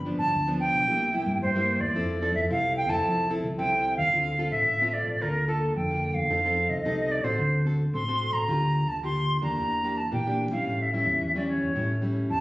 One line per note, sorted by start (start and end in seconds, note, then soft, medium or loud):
0.00 0.14 G1 loud
0.00 0.31 G2 medium
0.05 0.31 F3 medium
0.05 0.32 B3 medium
0.05 0.32 D4 medium
0.18 0.30 G1 medium
0.18 0.57 A5 loud
0.33 0.72 D2 loud
0.33 0.85 D3 medium
0.47 0.84 F3 medium
0.47 0.84 B3 medium
0.47 0.84 D4 medium
0.60 1.38 G5 loud
0.72 0.87 B1 medium
0.87 1.22 C2 loud
0.87 1.39 C3 medium
0.87 1.10 G3 medium
0.87 1.10 A#3 medium
0.87 1.11 E4 medium
1.13 1.50 G3 medium
1.13 1.51 A#3 medium
1.13 1.51 E4 medium
1.26 1.39 G2 medium
1.41 1.93 G2 medium
1.41 1.76 G2 medium
1.41 1.82 C5 medium
1.55 1.92 G3 medium
1.55 1.92 A#3 medium
1.55 1.92 E4 medium
1.80 1.93 E2 medium
1.80 2.34 D5 loud
1.95 2.31 F2 loud
1.95 2.47 F3 medium
1.95 2.19 C4 medium
1.95 2.19 E4 medium
1.95 2.19 A4 medium
2.22 2.45 C4 medium
2.22 2.46 E4 medium
2.22 2.46 A4 medium
2.35 2.47 F2 medium
2.35 2.41 E5 medium
2.50 2.89 C2 loud
2.50 3.02 C3 medium
2.50 2.87 C4 medium
2.50 2.87 E4 medium
2.50 2.87 A4 medium
2.50 2.76 F5 loud
2.77 2.91 G5 loud
2.89 3.05 F2 medium
2.89 3.26 C4 medium
2.89 3.27 E4 medium
2.89 3.27 A4 medium
2.89 3.30 A5 loud
3.04 3.39 C2 loud
3.04 3.56 F3 medium
3.30 3.47 C4 medium
3.30 3.47 E4 medium
3.30 3.47 A4 medium
3.44 3.56 C2 medium
3.58 3.94 C2 medium
3.58 4.10 C3 medium
3.58 4.09 C4 medium
3.58 4.09 E4 medium
3.58 4.09 A4 medium
3.58 3.96 G5 loud
3.97 4.10 D#2 loud
3.97 4.49 F5 loud
4.12 4.48 D2 loud
4.12 4.64 D3 medium
4.12 4.36 C4 medium
4.12 4.36 F4 medium
4.12 4.36 A4 medium
4.38 4.65 C4 medium
4.38 4.65 F4 medium
4.38 4.65 A4 medium
4.51 4.64 A1 medium
4.51 4.95 E5 loud
4.67 5.02 A1 medium
4.67 5.19 A2 medium
4.82 5.18 C4 medium
4.82 5.18 F4 medium
4.82 5.18 A4 medium
4.93 5.23 D5 medium
5.07 5.19 A1 medium
5.21 5.68 D2 medium
5.21 5.73 D3 medium
5.21 5.37 A#3 medium
5.21 5.38 F4 soft
5.21 5.38 A4 medium
5.21 5.47 A#4 medium
5.48 5.74 A#3 medium
5.48 5.74 F4 soft
5.48 5.74 A4 medium
5.76 6.11 F2 medium
5.76 6.28 D3 medium
5.76 6.16 G5 medium
5.90 6.27 A#3 medium
5.90 6.27 F4 medium
5.90 6.27 A4 medium
6.14 6.27 E2 medium
6.14 6.71 F5 loud
6.30 6.65 F2 medium
6.30 6.82 F3 medium
6.30 6.40 C4 medium
6.30 6.40 D#4 medium
6.30 6.40 A4 medium
6.45 6.81 C4 medium
6.45 6.81 D#4 medium
6.45 6.82 A4 medium
6.69 6.82 C2 loud
6.69 7.13 D#5 medium
6.85 7.20 C2 loud
6.85 7.37 C3 medium
6.85 7.22 C4 medium
6.85 7.22 D#4 medium
6.85 7.22 A4 medium
7.11 7.25 D5 medium
7.23 7.36 A1 medium
7.23 7.61 C4 medium
7.23 7.62 F#4 medium
7.23 7.62 A4 medium
7.23 7.66 C5 medium
7.39 7.85 D2 medium
7.39 7.91 D3 medium
7.65 7.82 C4 medium
7.65 7.82 F#4 soft
7.65 7.83 A4 medium
7.93 8.28 A1 medium
7.93 8.46 A2 medium
7.93 8.03 C4 medium
7.93 8.04 F#4 medium
7.93 8.04 A4 medium
7.93 8.34 C6 loud
8.08 8.44 C4 medium
8.08 8.44 F#4 medium
8.08 8.45 A4 medium
8.33 8.45 A1 medium
8.33 8.90 A#5 loud
8.48 8.83 D2 loud
8.48 9.00 D3 medium
8.48 8.83 A#3 medium
8.48 8.84 F4 medium
8.48 8.84 G4 medium
8.87 9.00 D2 medium
8.87 9.02 A5 medium
9.03 9.38 D2 loud
9.03 9.55 D3 medium
9.03 9.39 A#3 medium
9.03 9.40 F4 medium
9.03 9.40 G4 medium
9.03 9.41 C6 loud
9.42 9.54 D#2 medium
9.42 9.79 A#3 medium
9.42 9.79 D4 medium
9.42 9.80 G4 medium
9.42 9.99 A#5 loud
9.58 10.04 E2 medium
9.58 10.09 E3 medium
9.83 10.00 A#3 medium
9.83 10.00 D4 medium
9.83 10.00 G4 medium
9.97 10.11 A5 medium
10.12 10.47 A#2 medium
10.12 10.51 E3 medium
10.12 10.20 A#3 medium
10.12 10.20 D4 medium
10.12 10.20 G4 medium
10.12 10.50 G5 medium
10.26 10.49 A#3 medium
10.26 10.49 D4 medium
10.26 10.49 G4 medium
10.51 10.63 A#1 medium
10.51 10.92 G3 medium
10.51 10.92 C#4 medium
10.51 10.93 E4 medium
10.51 10.83 F5 medium
10.67 11.02 A1 medium
10.67 11.18 A2 medium
10.82 10.93 E5 medium
10.93 11.30 G3 medium
10.93 11.30 C#4 medium
10.93 11.30 E4 medium
10.93 11.32 E5 medium
11.06 11.18 E2 medium
11.21 11.56 E2 loud
11.21 11.73 E3 medium
11.35 11.71 G3 medium
11.35 11.72 C#4 medium
11.35 11.72 E4 medium
11.35 11.48 D5 medium
11.48 11.99 C#5 medium
11.60 11.72 E2 medium
11.75 12.22 A1 medium
11.75 12.27 A2 medium
11.75 11.91 G3 medium
11.75 11.91 C#4 medium
11.75 11.92 E4 medium
12.02 12.39 G3 medium
12.02 12.39 C#4 medium
12.02 12.39 E4 medium
12.30 12.40 E2 medium
12.30 12.40 E3 medium
12.30 12.40 A5 loud